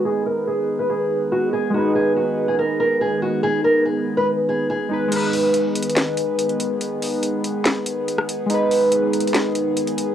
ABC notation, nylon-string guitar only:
X:1
M:4/4
L:1/16
Q:1/4=142
K:G#m
V:1 name="Nylon-string guitar"
G2 A2 G3 B G4 F2 G2 | F2 G2 F3 G A2 A2 G2 F2 | G2 A2 G3 B z2 G2 G4 | z16 |
z16 | z16 |]